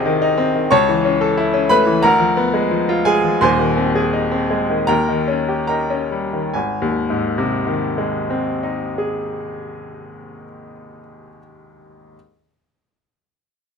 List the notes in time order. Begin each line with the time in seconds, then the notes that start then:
Already playing: C2 C3 D#3 C4 D#4 G4 G#4 D#5 G5 G#5
0.05 D#3
0.22 D#4
0.38 C4
0.55 D#3
0.71 C#2 C#5 A5 C#6
0.89 E3
1.05 C#4
1.21 A4
1.37 E4
1.54 C#4
1.69 A3 B4 B5
1.87 E3
2.03 D2 A#4 A#5
2.20 F3
2.37 B3
2.54 G#3
2.71 F3
2.89 F4
3.05 G#3 G#4 G#5
3.24 F3
3.41 D#1 D#2 C5 G#5 C6
3.59 D#3
3.77 C4
3.96 G#4
4.13 D#4
4.32 C4
4.51 G#3
4.70 D#3
4.87 D#2 A#4 G5 A#5
5.08 D#3
5.28 C#4
5.49 G4
5.67 D#4 A#4 G5 A#5
5.90 C#4
6.11 G3
6.33 D#3
6.54 G#1 G#5
6.82 D#2
7.10 G#2
7.38 C3
7.67 D#3
7.98 G#3
8.30 C4
8.63 D#4
8.98 G#4